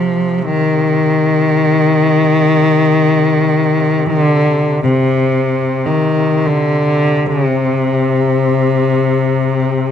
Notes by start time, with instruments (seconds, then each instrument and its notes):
Already playing: duduk C3, cello F3
0.38 cello F3
0.45 cello D#3
4.07 cello D#3
4.19 cello D3
4.84 cello C3
5.86 cello D#3
6.47 cello D3
7.26 cello C#3
7.45 cello C3